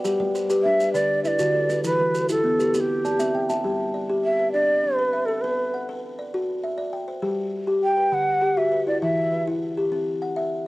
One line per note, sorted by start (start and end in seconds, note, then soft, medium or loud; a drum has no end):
0.00 0.19 D5 medium
0.00 0.20 F#5 medium
0.00 0.20 G5 medium
0.04 0.35 G3 medium
0.04 0.48 G4 medium
0.04 maracas medium
0.20 0.50 G3 medium
0.20 0.65 D5 medium
0.35 0.80 C5 medium
0.35 maracas medium
0.50 0.80 G4 medium
0.50 0.94 B4 medium
0.50 maracas medium
0.63 0.95 D4 medium
0.63 0.92 E5 medium
0.80 1.10 B4 medium
0.80 1.25 D5 medium
0.80 maracas medium
0.94 1.25 D3 medium
0.94 1.10 B4 medium
0.94 1.22 D5 medium
0.94 maracas medium
1.24 1.70 E4 medium
1.24 1.70 B4 medium
1.24 1.81 D5 loud
1.24 1.29 E5 medium
1.24 maracas medium
1.39 1.70 D3 medium
1.39 1.70 F#4 medium
1.39 maracas medium
1.55 2.00 A4 medium
1.69 2.00 F#4 medium
1.69 2.00 B4 medium
1.69 maracas medium
1.84 2.15 E3 medium
1.84 2.29 E4 medium
1.84 2.27 B4 medium
1.84 maracas medium
2.00 2.30 E3 medium
2.00 2.45 B4 medium
2.14 2.59 A4 medium
2.14 maracas medium
2.29 2.60 E4 medium
2.29 2.73 G4 medium
2.29 2.77 A4 medium
2.29 maracas medium
2.44 2.74 B3 medium
2.60 2.90 G4 medium
2.60 3.05 B4 medium
2.60 maracas medium
2.74 3.05 C4 medium
2.74 2.90 G4 medium
2.74 2.81 A4 medium
2.74 maracas medium
2.80 3.51 G4 medium
3.05 3.50 D5 medium
3.05 3.50 A5 medium
3.05 maracas medium
3.19 3.49 C4 medium
3.19 3.49 E5 medium
3.19 maracas medium
3.35 3.80 G5 medium
3.49 3.80 E5 medium
3.49 3.79 A5 medium
3.49 maracas medium
3.64 3.94 G3 medium
3.64 4.08 G4 medium
3.94 4.39 D5 medium
4.09 4.39 G4 medium
4.24 4.52 E5 medium
4.39 4.84 B4 medium
4.52 4.84 D4 medium
4.52 4.97 D5 medium
4.84 5.29 C4 medium
4.95 5.27 B4 medium
4.95 5.29 B4 medium
5.13 5.58 E5 medium
5.26 5.43 A4 medium
5.26 5.59 A4 medium
5.41 5.74 B3 medium
5.41 5.88 B4 medium
5.74 6.19 F#5 medium
5.89 6.19 B4 medium
6.19 6.64 D5 medium
6.34 6.64 F#4 medium
6.64 7.08 E5 medium
6.78 7.08 D5 medium
6.93 7.38 G5 medium
7.08 7.38 C5 medium
7.22 7.53 G3 medium
7.22 7.66 G4 medium
7.67 7.97 G4 medium
7.84 8.15 G5 medium
7.97 8.27 B4 medium
8.12 8.42 D3 medium
8.12 8.59 F#5 medium
8.42 8.87 G4 medium
8.57 8.87 F#4 medium
8.57 8.87 E5 medium
8.72 9.17 B4 medium
8.87 9.01 E4 medium
8.87 9.01 D5 medium
9.02 9.32 E3 medium
9.02 9.46 E4 medium
9.02 9.44 E5 medium
9.32 9.77 B4 medium
9.47 9.77 E4 medium
9.77 10.07 G4 medium
9.92 10.22 C4 medium
10.22 10.66 F#5 medium
10.36 10.66 E5 medium